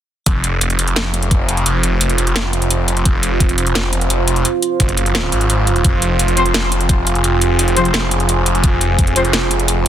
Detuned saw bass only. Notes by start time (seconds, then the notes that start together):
0.26 F1
1.66 F1
3.05 F1
4.80 F#1
5.32 G#1
5.85 F1
7.24 F1
8.64 F1